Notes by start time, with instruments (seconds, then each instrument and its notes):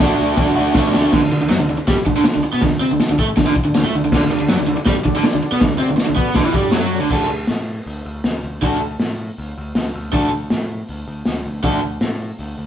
0.00 picked electric bass D2, overdriven electric guitar D3 A3 D4, transistor combo organ F#4 A4 D5, kick, tambourine
0.05 overdriven electric guitar F#4
0.20 picked electric bass D2, transistor combo organ F#4 A4 D5
0.37 picked electric bass D2, transistor combo organ F#4 A4 D5, kick, snare
0.55 picked electric bass D2, overdriven electric guitar D4 F#4
0.60 overdriven electric guitar A3, transistor combo organ F#4 A4 D5
0.74 picked electric bass D2, overdriven electric guitar D3 A3 D4, transistor combo organ F#4, kick, snare, tambourine
0.78 overdriven electric guitar F#4, transistor combo organ A4 D5
0.94 picked electric bass D2, overdriven electric guitar D4 F#4, transistor combo organ F#4, snare
0.98 overdriven electric guitar A3, transistor combo organ A4 D5
1.12 picked electric bass D2, overdriven electric guitar D3, kick, snare, crash
1.23 picked electric bass D2, overdriven electric guitar D3
1.32 picked electric bass D2, overdriven electric guitar D3
1.41 picked electric bass D2, overdriven electric guitar D3
1.49 picked electric bass F#2, overdriven electric guitar F#3, snare, open hi-hat, tambourine
1.60 picked electric bass D2, overdriven electric guitar D3
1.70 picked electric bass D2, overdriven electric guitar D3
1.78 muted overdriven electric guitar stroke, muted picked electric bass stroke
1.87 picked electric bass G2, overdriven electric guitar G3, kick, snare, open hi-hat
1.97 muted overdriven electric guitar stroke
2.06 picked electric bass D2, overdriven electric guitar D3, kick
2.16 picked electric bass D2, overdriven electric guitar D3
2.24 muted picked electric bass stroke, muted overdriven electric guitar stroke, snare, open hi-hat, tambourine
2.35 picked electric bass D2, overdriven electric guitar D3
2.45 muted overdriven electric guitar stroke, muted picked electric bass stroke
2.53 picked electric bass B2, overdriven electric guitar B3
2.61 picked electric bass D2, overdriven electric guitar D3, kick, snare, open hi-hat
2.80 picked electric bass C3, overdriven electric guitar C4
2.91 picked electric bass D2, overdriven electric guitar D3
3.00 muted picked electric bass stroke, muted overdriven electric guitar stroke, snare, open hi-hat, tambourine
3.10 picked electric bass D2, overdriven electric guitar D3
3.19 picked electric bass A2, overdriven electric guitar A3, kick
3.29 muted overdriven electric guitar stroke, muted picked electric bass stroke
3.37 picked electric bass D2, overdriven electric guitar D3, kick, snare, open hi-hat
3.46 picked electric bass D2, overdriven electric guitar D3
3.55 muted overdriven electric guitar stroke, muted picked electric bass stroke, kick
3.65 picked electric bass D2, overdriven electric guitar D3
3.75 picked electric bass D2, overdriven electric guitar D3, snare, open hi-hat, tambourine
3.84 picked electric bass A2, overdriven electric guitar A3
3.94 picked electric bass D2, overdriven electric guitar D3
4.04 picked electric bass D2, overdriven electric guitar D3
4.12 picked electric bass D2, overdriven electric guitar D3, transistor combo organ F#4 A4 D5, kick, snare, crash
4.23 picked electric bass D2, overdriven electric guitar D3
4.32 picked electric bass D2, overdriven electric guitar D3, transistor combo organ F#4 A4 D5
4.40 picked electric bass D2, overdriven electric guitar D3
4.49 picked electric bass F#2, overdriven electric guitar F#3, transistor combo organ F#4 A4 D5, snare, open hi-hat, tambourine
4.59 picked electric bass D2, overdriven electric guitar D3
4.68 picked electric bass D2, overdriven electric guitar D3, transistor combo organ F#4 A4
4.72 transistor combo organ D5
4.78 muted overdriven electric guitar stroke, muted picked electric bass stroke
4.85 picked electric bass G2, overdriven electric guitar G3, transistor combo organ F#4 A4 D5, kick, snare, open hi-hat
4.95 muted overdriven electric guitar stroke, muted picked electric bass stroke
5.05 picked electric bass D2, overdriven electric guitar D3, transistor combo organ F#4 A4 D5, kick
5.15 picked electric bass D2, overdriven electric guitar D3
5.24 transistor combo organ F#4 A4 D5, muted picked electric bass stroke, muted overdriven electric guitar stroke, snare, open hi-hat, tambourine
5.33 picked electric bass D2, overdriven electric guitar D3
5.43 transistor combo organ F#4 A4 D5, muted picked electric bass stroke, muted overdriven electric guitar stroke
5.52 picked electric bass B2, overdriven electric guitar B3
5.60 picked electric bass D2, overdriven electric guitar D3, transistor combo organ F#4 A4 D5, kick, snare, open hi-hat
5.79 picked electric bass C3, overdriven electric guitar C4, transistor combo organ F#4 A4
5.83 transistor combo organ D5
5.89 picked electric bass D2, overdriven electric guitar D3
5.97 transistor combo organ F#4 A4 D5, muted overdriven electric guitar stroke, muted picked electric bass stroke, snare, open hi-hat, tambourine
6.06 picked electric bass D2, overdriven electric guitar D3
6.16 picked electric bass B2, overdriven electric guitar B3, transistor combo organ F#4 A4 D5, kick
6.35 picked electric bass D2, overdriven electric guitar D3, transistor combo organ F#4 A4 D5, kick, snare, open hi-hat
6.44 picked electric bass E2, overdriven electric guitar E3
6.53 picked electric bass G2, overdriven electric guitar G3, transistor combo organ F#4 A4 D5, kick
6.72 picked electric bass F#2, overdriven electric guitar F#3, transistor combo organ F#4 A4 E5, snare, open hi-hat, tambourine
6.92 transistor combo organ F#4 A4 D5
7.01 picked electric bass D2, overdriven electric guitar D3
7.10 picked electric bass D2, overdriven electric guitar D3 D4 F#4 A4, kick, crash
7.30 picked electric bass D2
7.47 picked electric bass A2, snare, open hi-hat
7.86 picked electric bass D2, open hi-hat
8.06 picked electric bass D2
8.24 picked electric bass D2, snare, open hi-hat
8.43 picked electric bass D2
8.62 picked electric bass D2, overdriven electric guitar D3 D4 F#4 A4, kick, open hi-hat
8.81 picked electric bass D2
9.00 picked electric bass A2, snare, open hi-hat
9.38 picked electric bass D2, open hi-hat
9.58 picked electric bass D2
9.75 picked electric bass D2, snare, open hi-hat
9.95 picked electric bass D2
10.12 picked electric bass D2, overdriven electric guitar D3 D4 F#4 A4, kick, open hi-hat
10.32 picked electric bass D2
10.50 picked electric bass A2, snare, open hi-hat
10.88 picked electric bass D2, open hi-hat
11.08 picked electric bass D2
11.25 picked electric bass D2, snare, open hi-hat
11.46 picked electric bass D2
11.63 picked electric bass D2, overdriven electric guitar D3 D4 F#4 A4, kick, open hi-hat
11.83 picked electric bass D2
12.01 picked electric bass A2, snare, open hi-hat
12.38 picked electric bass D2, open hi-hat
12.58 picked electric bass D2